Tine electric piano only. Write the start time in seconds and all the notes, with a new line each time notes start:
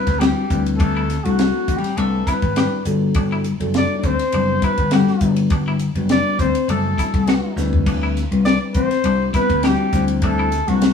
0.20 G3 C4 D4 E4 F#4
0.49 G3 C4 D4 E4 B4
1.24 A3 C4 D4 E4 A4
1.97 G3 C4 D4 E4 B4
2.57 G3 C4 D4 E4 B4
2.85 G3 B3 D4 F#4 A4
3.60 G3 B3 D4 F#4 A4
4.33 G3 B3 D4 F#4 B4
4.93 G3 B3 D4 F#4 A4
5.21 G3 B3 D4 F#4 B4
5.95 G3 B3 D4 F#4 B4
6.68 G3 B3 D4 F#4 A4
7.27 G3 B3 D4 F#4 B4
7.57 G3 C4 D4 E4 B4
8.31 G3 C4 D4 E4 B4
9.05 G3 C4 D4 E4 G4
9.65 G3 C4 D4 E4 F#4
9.93 G3 C4 D4 E4 C5
10.68 A3 C4 D4 E4 B4